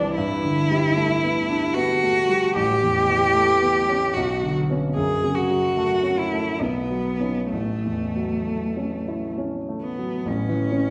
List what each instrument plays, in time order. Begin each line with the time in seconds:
Already playing: grand piano C2 G2 E3 G3 C4 D4, cello D4
0.15 grand piano G2, cello E4
0.44 grand piano D3
0.71 grand piano G3
0.96 grand piano A3
1.23 grand piano B3
1.50 grand piano D4
1.74 grand piano B3, cello F#4
2.03 grand piano A3
2.29 grand piano G3
2.56 grand piano A1, cello G4
2.83 grand piano E2
3.09 grand piano E3
3.35 grand piano A3
3.62 grand piano B3
3.89 grand piano C#4
4.13 grand piano B1, cello F#4
4.43 grand piano D3
4.70 grand piano B3 C#4
4.96 grand piano F#2, cello G#4
5.24 grand piano C#3
5.35 cello F#4
5.50 grand piano F#3
5.77 grand piano A3
6.03 grand piano C#4
6.19 cello E4
6.33 grand piano A3
6.61 grand piano B1, cello B3
6.91 grand piano F#3
7.20 grand piano C#4 D#4
7.50 grand piano A1, cello A3
7.86 grand piano E2
8.16 grand piano F#3
8.47 grand piano A3
8.77 grand piano C#4
9.08 grand piano E4
9.38 grand piano C#4
9.69 grand piano A3
9.82 cello B3
9.98 grand piano F#3
10.26 grand piano A1, cello C#4
10.49 grand piano E3
10.72 grand piano C#4